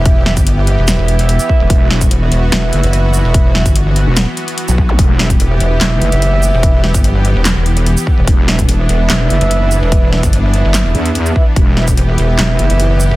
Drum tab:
HH |x--xx-x-x-xxx---|x--xx-x-x-xxx---|x--xx-x-x-xxx---|x--xx-x-x-xxx---|
SH |---x----x----x--|---x----------x-|---x----x----x--|---x----------x-|
CP |----------------|----------------|----------------|--------x-------|
SD |--o-----o-------|--o-----o-------|--o-----o-------|--o-----o-------|
BD |o--o----------o-|o--o------------|o--o----------o-|o--o------------|

HH |x--xx-x-x-xxx---|x--xx-x-x-xxx---|x--xx-x-x-xxx---|x--xx-x-x-xxx---|
SH |---x----x----x--|---x----------x-|---x----x----x--|---x----------x-|
CP |--------x-------|--------x-------|--------x-------|--------x-------|
SD |--o-----o-------|--o-----o-------|--o-----o-------|--o-----o-------|
BD |o--o----------o-|o--o------------|o--o----------o-|o--o------------|